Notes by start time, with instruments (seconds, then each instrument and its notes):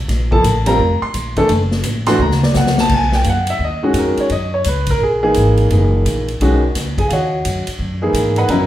0.08 upright bass A#1, snare, ride
0.31 grand piano F3 A#3 E4 A4 A5, kick
0.44 upright bass A1, hi-hat pedal, ride
0.66 grand piano G3 C4 F4 A#4 A#5, ride
0.79 upright bass F1
1.02 grand piano C6, muted upright bass stroke
1.14 upright bass A#1, hi-hat pedal, ride
1.36 grand piano E3 A3 D4 A4, kick, ride
1.49 upright bass F#1, ride
1.71 snare
1.83 upright bass A1, hi-hat pedal, ride
2.06 grand piano E3 A3 D4 F#4 C6, snare, ride
2.19 upright bass D2, grand piano A#5, mid tom
2.31 snare
2.43 grand piano D5, snare
2.54 upright bass C2, grand piano F#5, snare, hi-hat pedal
2.67 snare
2.78 grand piano A5, snare
2.89 upright bass B1, kick, crash
2.95 grand piano G#5
3.12 grand piano G5, snare
3.24 upright bass F#2, grand piano F5, hi-hat pedal, ride
3.29 grand piano F#5
3.47 grand piano E5, ride
3.59 upright bass D#2
3.64 grand piano D#5
3.83 grand piano D#3 G#3 C#4 F#4
3.93 upright bass F2, hi-hat pedal, ride
3.98 grand piano A#4
4.17 grand piano C#5, muted upright bass stroke, ride
4.30 upright bass F#2, grand piano D#5, ride
4.54 grand piano C#5
4.64 upright bass C#2, grand piano B4, hi-hat pedal, ride
4.86 grand piano A#4, kick, ride
5.00 upright bass A#1, grand piano G#4
5.23 grand piano E3 A#3 D#4 G#4
5.34 upright bass G#1, hi-hat pedal, ride
5.57 ride
5.70 upright bass F#1, grand piano E3 A#3 D#4 G#4, ride
6.05 upright bass A#1, hi-hat pedal, ride
6.28 ride
6.40 upright bass B1, grand piano D#3 G#3 C#4 F#4, ride
6.75 upright bass C#2, snare, hi-hat pedal, ride
6.98 grand piano G#4 G#5, kick, ride
7.08 upright bass D#2, grand piano F5, ride
7.13 grand piano F#4 C#5 D#5 F#5
7.45 upright bass F#2, hi-hat pedal, ride
7.67 muted upright bass stroke, ride
7.79 upright bass F#2
8.02 grand piano E3 A#3 D#4 G#4
8.13 upright bass G#2, hi-hat pedal, ride
8.36 grand piano B4 D#5 F#5 B5, ride
8.48 upright bass F#2, grand piano C#3 F#3 B3 E4 A#4 D#5 F#5 A#5, ride